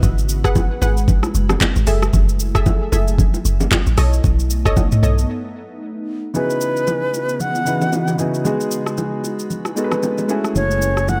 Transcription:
Already playing: ambient pad F#4
0.03 log drum bass G#1, ambient pad G#3 B4, kick, low conga, shaker
0.18 shaker
0.29 shaker
0.44 synth pluck G#4 B4 F#5, kick, cross-stick, shaker
0.55 kick, high bongo, low conga, shaker
0.82 log drum bass G#1, synth pluck G#4 B4 F#5, high bongo, shaker
0.97 shaker
1.08 kick, low conga, shaker
1.23 cross-stick, high bongo, shaker
1.35 log drum bass F#1, shaker
1.49 cross-stick, low bongo, shaker
1.61 kick, clap, high bongo, low bongo, shaker
1.76 log drum bass G#1, shaker
1.87 log drum bass F#1, ambient pad F#3 A3 E4 G#5, synth pluck G#4 A4 E5, open hi-hat, shaker
2.02 cross-stick, shaker
2.13 log drum bass F#1, kick, low conga, shaker
2.29 shaker
2.40 shaker
2.55 synth pluck G#4 A4 E5, kick, cross-stick, shaker
2.66 kick, high bongo, low conga, shaker
2.92 log drum bass F#1, synth pluck G#4 A4 E5, high bongo, shaker
3.08 shaker
3.18 kick, low conga, shaker
3.34 high bongo, shaker
3.45 log drum bass F#1, shaker
3.60 low bongo, shaker
3.71 kick, clap, high bongo, low bongo, shaker
3.86 log drum bass A1, shaker
3.97 log drum bass B1, ambient pad A3 B3 D#4, synth pluck A4 C#5 D#5, cross-stick, open hi-hat, shaker
4.13 shaker
4.24 log drum bass B1, kick, low conga, shaker
4.39 shaker
4.50 shaker
4.65 synth pluck A4 C#5 D#5, kick, cross-stick, shaker
4.77 kick, high bongo, low conga, shaker
4.92 mid tom, shaker
5.03 log drum bass B1, synth pluck A4 C#5 D#5, shaker
5.18 shaker
6.34 grand piano C#3 B3 D#4 E4 F#4 G#4, ambient pad C#3 E3 B3 F#4 D#5, flute B4, low conga, shaker
6.50 shaker
6.61 shaker
6.77 shaker
6.87 high bongo, low conga, shaker
7.14 high bongo, shaker
7.29 shaker
7.40 flute F#5, low conga, shaker
7.55 high bongo, shaker
7.65 grand piano C#3 B3 D#4 E4 F#4 B4, shaker
7.81 low bongo, shaker
7.92 high bongo, low bongo, shaker
8.08 low bongo, shaker
8.18 grand piano C#3 B3 D#4 E4 F#4 G#4, shaker
8.34 shaker
8.44 grand piano G#3 B3 D#4 F#4 G#4, ambient pad G#3 B4, low conga, shaker
8.60 shaker
8.71 shaker
8.86 cross-stick, shaker
8.97 high bongo, low conga, shaker
9.24 high bongo, shaker
9.39 shaker
9.50 low conga, shaker
9.65 cross-stick, high bongo, shaker
9.76 grand piano G#3 B3 D#4 F#4 A4, shaker
9.84 grand piano B4
9.92 cross-stick, low bongo, shaker
10.03 high bongo, low bongo, shaker
10.18 low bongo, shaker
10.28 ambient pad F#3 A3 E4 G#4, grand piano A3 C#4 E4 F#4 G#4, shaker
10.44 cross-stick, shaker
10.55 fingered electric bass F#1, flute C#5, low conga, shaker
10.71 shaker
10.82 shaker
10.97 cross-stick, shaker
11.08 flute F#5, high bongo, low conga, shaker

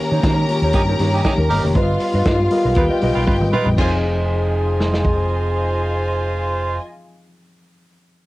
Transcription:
Already playing: reed electric piano D#3 A#3 G4 C#5, french horn section D#3 A#3 C#4 G4, string section A#4 A#5
0.00 muted clean electric guitar stroke
0.12 fingered electric bass D#3, clean electric guitar D#4 G4 C#5
0.23 fingered electric bass D#3, clean electric guitar D#4 G4 C#5, kick, snare, closed hi-hat
0.39 muted clean electric guitar stroke
0.48 reed electric piano D#3 A#3 F4 C#5, muted clean electric guitar stroke, open hi-hat
0.56 reed electric piano G4
0.62 fingered electric bass D#2, clean electric guitar D#4 G4 C#5
0.73 fingered electric bass G2, horn section C#4 D#4 G4, kick, closed hi-hat
0.89 clean electric guitar D#4 G4 C#5
0.99 fingered electric bass G2, reed electric piano D#3 A#3 G4 C#5, clean electric guitar D#4 G4 C#5, open hi-hat
1.14 horn section C#4 D#4 G4, muted clean electric guitar stroke
1.25 horn section C#4 D#4 G4, muted clean electric guitar stroke, kick, snare, closed hi-hat
1.37 fingered electric bass D#2, reed electric piano D#3 A#3 G4 A#4, muted clean electric guitar stroke
1.50 fingered electric bass G1, horn section D#4 G4 A#4, open hi-hat
1.64 fingered electric bass F1, reed electric piano D#3 A#3 G4 C#5, muted clean electric guitar stroke
1.75 fingered electric bass G1, reed electric piano G3 F4 B4 C5, french horn section G3 B3 F4, string section F4 F5, clean electric guitar F4 B4 D#5, kick, closed hi-hat
1.83 reed electric piano D#5
2.00 muted clean electric guitar stroke, open hi-hat
2.14 fingered electric bass G2, clean electric guitar F4 B4 D#5
2.25 fingered electric bass G2, clean electric guitar F4 B4 D#5, kick, snare, closed hi-hat
2.40 muted clean electric guitar stroke
2.51 reed electric piano G3 F4 A#4 D#5, muted clean electric guitar stroke, open hi-hat
2.58 reed electric piano B4
2.65 fingered electric bass B1, clean electric guitar F4 B4 D#5
2.75 fingered electric bass D#2, horn section D#4 F4 B4, string section G4 G5, muted clean electric guitar stroke, kick, closed hi-hat
2.91 clean electric guitar F4 B4 D#5
3.02 fingered electric bass B1, reed electric piano G3 F4 B4 D#5, clean electric guitar F4 B4 D#5, open hi-hat
3.15 fingered electric bass B1, horn section D#4 F4 B4, muted clean electric guitar stroke
3.27 fingered electric bass G1, horn section D#4 F4 B4, kick, high tom
3.40 fingered electric bass G#1, reed electric piano G3 F4 B4 D#5, muted clean electric guitar stroke, mid tom
3.53 horn section D#4 F4 B4, clean electric guitar F4 B4 D#5, mid tom
3.64 fingered electric bass A#1, reed electric piano G3 F4 B4 D#5, muted clean electric guitar stroke, floor tom
3.75 fingered electric bass F1, reed electric piano F3 C4 D#4, french horn section F3 C4 D#4 G#4, horn section G#3 F4 C5, clean electric guitar G#4, kick, crash
3.79 string section F4 D#5 G#5, reed electric piano G#4, clean electric guitar C5
3.83 clean electric guitar D#5
4.80 snare
4.94 snare
5.05 kick

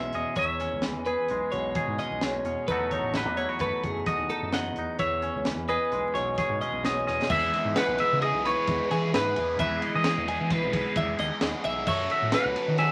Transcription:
Already playing: clean electric guitar E2 B2 E3 G#3 C#4 G#4 C#5 E5
0.13 fingered electric bass E2, clean electric guitar C#4 D#5, closed hi-hat
0.36 clean electric guitar E2 C#5 E5, fingered electric bass E2, kick, closed hi-hat
0.60 clean electric guitar C#4, snare, closed hi-hat
0.73 fingered electric bass C#2
0.82 clean electric guitar E3, snare, closed hi-hat
0.96 fingered electric bass E2, clean electric guitar D#5
1.05 clean electric guitar G#4 B4, closed hi-hat
1.28 fingered electric bass B1, clean electric guitar G#3, closed hi-hat
1.52 fingered electric bass B1, clean electric guitar B2 C#5, closed hi-hat
1.75 clean electric guitar G#4, kick, closed hi-hat
1.88 fingered electric bass G#2
1.99 clean electric guitar C#4 D#5, snare, closed hi-hat
2.11 fingered electric bass B1
2.21 clean electric guitar E2 C#5, snare, closed hi-hat
2.44 fingered electric bass E2, clean electric guitar C#4, closed hi-hat
2.68 fingered electric bass E2, clean electric guitar E2 F#3 A3 D#4 A4 B4, kick, closed hi-hat
2.72 clean electric guitar F#4
2.91 clean electric guitar D#4 C#5, kick, closed hi-hat
3.03 fingered electric bass A1
3.14 clean electric guitar F#3 B4 D#5, snare, closed hi-hat
3.25 fingered electric bass E2
3.37 clean electric guitar E4 C#5, closed hi-hat
3.49 clean electric guitar F#4
3.59 fingered electric bass F#2, clean electric guitar A3 B4 C#5, kick, snare, closed hi-hat
3.84 clean electric guitar E2 G#4, fingered electric bass F#2, kick, closed hi-hat
4.06 clean electric guitar F#4 D#5, kick, closed hi-hat
4.18 fingered electric bass D#2
4.29 clean electric guitar D#4 A4, closed hi-hat
4.42 fingered electric bass F#2
4.52 clean electric guitar E2 D#5 F#5, snare, closed hi-hat
4.76 fingered electric bass E2, clean electric guitar D#4, closed hi-hat
4.99 clean electric guitar E2 C#5 E5, fingered electric bass E2, kick, closed hi-hat
5.22 clean electric guitar C#4, closed hi-hat
5.35 fingered electric bass C#2
5.45 clean electric guitar E3, snare, closed hi-hat
5.57 fingered electric bass E2
5.68 clean electric guitar G#4 B4 D#5, closed hi-hat
5.92 fingered electric bass B1, clean electric guitar G#3, closed hi-hat
6.14 fingered electric bass B1, clean electric guitar B2 C#5, snare, closed hi-hat
6.38 clean electric guitar G#4 C#5, kick, snare, closed hi-hat
6.50 fingered electric bass G#2
6.61 clean electric guitar C#4 D#5, closed hi-hat
6.73 fingered electric bass B1
6.83 clean electric guitar E2 C#5 D#5, snare, closed hi-hat
7.07 fingered electric bass E2, clean electric guitar C#4 D#5, snare
7.22 snare
7.30 fingered electric bass E2, overdriven electric guitar E3 G#3 B3 E4 G#4, clean electric guitar E5, kick, crash
7.53 overdriven electric guitar B3 E4 G#4, snare, ride
7.65 fingered electric bass G#2
7.76 overdriven electric guitar G#3 B3 E4 G#4, clean electric guitar B4 F#5, snare, ride
7.88 fingered electric bass B1
7.98 overdriven electric guitar E4 G#4, clean electric guitar E5, ride
8.03 overdriven electric guitar B3
8.12 fingered electric bass C#3
8.22 overdriven electric guitar E3 G#3 B3 E4, clean electric guitar G#4 D#5, ride
8.26 overdriven electric guitar G#4
8.34 fingered electric bass B1
8.45 overdriven electric guitar B3 E4 G#4, clean electric guitar B4 C#5, snare, ride
8.67 fingered electric bass E2, kick, snare, ride
8.91 fingered electric bass E3, overdriven electric guitar B3 E4 G#4, clean electric guitar G#4, snare, ride
9.13 fingered electric bass G#2, overdriven electric guitar E3 G#3 B3 E4 G#4, clean electric guitar B4, snare, ride
9.36 fingered electric bass E2, overdriven electric guitar B3 E4 G#4, ride
9.58 fingered electric bass E2, overdriven electric guitar E3 G#3 B3 E4 G#4, clean electric guitar B4 E5, kick, ride
9.81 overdriven electric guitar B3 E4 G#4, clean electric guitar D#5, ride
9.95 fingered electric bass E3, clean electric guitar D#5
10.04 overdriven electric guitar G#3 B3 E4 G#4, snare, ride
10.17 fingered electric bass E2
10.27 overdriven electric guitar B3 E4 G#4, clean electric guitar G#4, ride
10.40 fingered electric bass E3
10.50 overdriven electric guitar E3 G#3 B3 E4 G#4, clean electric guitar B4, kick, snare, ride
10.63 fingered electric bass B1
10.72 overdriven electric guitar B3 E4 G#4, kick, ride
10.96 fingered electric bass E2, clean electric guitar E5, kick, ride
11.18 fingered electric bass D#2, overdriven electric guitar B3 E4 G#4, clean electric guitar D#5, snare, ride
11.40 fingered electric bass D#2, overdriven electric guitar E3 G#3 B3 E4 G#4, snare, ride
11.63 fingered electric bass B1, overdriven electric guitar B3 E4 G#4, clean electric guitar E5, ride
11.86 fingered electric bass F#2, overdriven electric guitar F#3 C#4 F#4 A4, clean electric guitar C#5 E5, kick, crash
12.09 overdriven electric guitar C#4 F#4 A4, clean electric guitar E5, ride
12.22 fingered electric bass A2
12.32 overdriven electric guitar F#3 C#4 F#4 A4, clean electric guitar B4 F#5, snare, ride
12.45 fingered electric bass C#2
12.56 overdriven electric guitar C#4 F#4 A4, ride
12.68 fingered electric bass D#3
12.78 overdriven electric guitar F#3 C#4 F#4, clean electric guitar G#4 E5, snare, ride
12.82 overdriven electric guitar A4

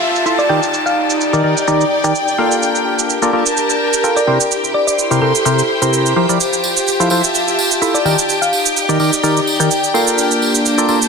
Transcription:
Already playing: string section F4 E5 A5, string machine G4 G5, downlifter
0.15 shaker
0.26 synth stab E4 F4 A4 E5, shaker
0.39 synth pluck D5, shaker
0.49 synth stab D#3 D#4 G4 A#4 D5, string section D#4, synth pluck G5
0.63 string section D5, shaker
0.74 shaker
0.86 synth pluck F5, shaker
1.10 shaker
1.21 shaker
1.33 synth stab D#3 D#4 G4 A#4 D5, shaker
1.44 synth stab D#3 D#4 G4 A#4 D5, string section G5
1.57 shaker
1.68 synth stab D#3 D#4 G4 A#4 D5, shaker
1.81 shaker
2.04 synth stab D#3 D#4 G4 A#4 D5, synth pluck G5, shaker
2.15 shaker
2.28 shaker
2.38 synth stab A#3 F4 A4 A#4 F5
2.52 shaker
2.62 string section D4, shaker
2.75 shaker
2.91 string section A#4
2.99 shaker
3.10 shaker
3.22 synth stab A#3 F4 A4 A#4 D5, shaker
3.33 synth stab A#3 F4 A4 A#4 D5, string section A5
3.46 shaker
3.57 shaker
3.70 shaker
3.93 shaker
4.04 synth stab F4 A4 A#4 G5, shaker
4.17 synth pluck D5, shaker
4.27 synth stab C3 E4 G4 A#4 C5, string section E4, synth pluck G5
4.41 shaker
4.51 shaker
4.64 shaker
4.74 string section C5, synth pluck D5
4.84 synth pluck D5, string section C6
4.88 shaker
4.99 shaker
5.11 synth stab C3 E4 G4 A#4 C5, shaker
5.22 synth stab C3 E4 G4 A#4 C5, synth pluck A4
5.35 shaker
5.45 synth stab C3 E4 G4 A#4 C5, shaker
5.59 shaker
5.82 synth stab C3 E4 G4 A#4 C5, shaker
5.93 shaker
6.06 shaker
6.16 synth stab F3 E4 G4 A#4 C5
6.29 synth stab F3 E4 G4 A#4 D5, shaker
6.40 string section F4, tambourine, shaker
6.53 tambourine, shaker
6.64 tambourine
6.76 tambourine, shaker
6.86 tambourine, shaker
7.00 synth stab F3 E4 F4 A4 C5, string section E5, shaker
7.10 synth stab F3 E4 F4 A4 C5, tambourine
7.15 string section A5
7.23 tambourine, shaker
7.34 tambourine, shaker
7.47 tambourine, shaker
7.59 tambourine
7.71 tambourine, shaker
7.82 synth stab E4 F4 A4 E5, tambourine, shaker
7.94 synth pluck D5, tambourine, shaker
8.05 synth stab D#3 D#4 G4 A#4 D5, string section D#4, synth pluck G5, tambourine
8.18 tambourine, shaker
8.29 tambourine, shaker
8.42 synth pluck F5, tambourine, shaker
8.53 tambourine
8.65 tambourine, shaker
8.76 tambourine, shaker
8.83 string section D5
8.89 synth stab D#3 D#4 G4 A#4 D5, shaker
9.00 synth stab D#3 D#4 G4 A#4 D5, string section G5, tambourine
9.13 tambourine, shaker
9.23 synth stab D#3 D#4 G4 A#4 D5, tambourine, shaker
9.36 tambourine, shaker
9.47 tambourine
9.60 synth stab D#3 D#4 G4 A#4 D5, synth pluck G5, shaker
9.71 tambourine, shaker
9.84 tambourine, shaker
9.94 synth stab A#3 F4 A4 A#4 F5, tambourine
10.07 tambourine, shaker
10.18 string section D4, tambourine, shaker
10.28 string section A#3, tambourine, shaker
10.42 tambourine
10.54 tambourine, shaker
10.65 tambourine, shaker
10.78 synth stab A#3 F4 A4 A#4 D5, shaker
10.89 synth stab A#3 F4 A4 A#4 D5, tambourine
10.93 string section A5
11.01 tambourine, shaker

